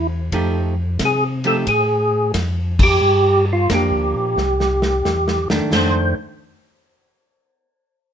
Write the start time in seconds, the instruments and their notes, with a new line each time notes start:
Already playing: tonewheel organ E2
0.32 tonewheel organ F2, hollow-body jazz guitar F3 A3 D#4 G4, kick, ride
0.99 tonewheel organ C3, kick, snare, hi-hat pedal, ride
1.05 tonewheel organ G#4
1.44 hollow-body jazz guitar F3 A3 D#4 G4, tonewheel organ A4, ride
1.67 tonewheel organ A2 G#4, kick, ride
2.34 tonewheel organ F2, kick, snare, hi-hat pedal, ride
2.79 kick, crash
2.83 tonewheel organ G4
3.01 tonewheel organ G2
3.53 tonewheel organ F4
3.69 tonewheel organ F2, hollow-body jazz guitar F3 A#3 D4, kick, snare, hi-hat pedal, ride
3.74 tonewheel organ G4
3.90 tonewheel organ D2
4.14 tonewheel organ A#2
4.36 tonewheel organ C2, snare
4.60 snare
4.82 snare
5.05 tonewheel organ E2, snare, hi-hat pedal
5.28 snare
5.50 tonewheel organ E2, hollow-body jazz guitar D#3 A3 D4, snare
5.72 tonewheel organ F2 C5, hollow-body jazz guitar D#3 A3 D4, snare, crash